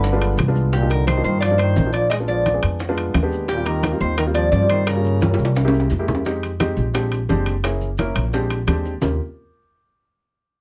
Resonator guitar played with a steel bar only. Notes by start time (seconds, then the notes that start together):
Already playing: B4
0.73 G4
0.90 A#4
1.07 C5
1.24 C5
1.40 D5
1.58 C5
1.93 D5
2.10 D#5
2.28 D5
3.48 G4
3.66 A#4
4.01 C5
4.18 A#4
4.34 D5
4.52 D5
4.70 C5
4.87 A#4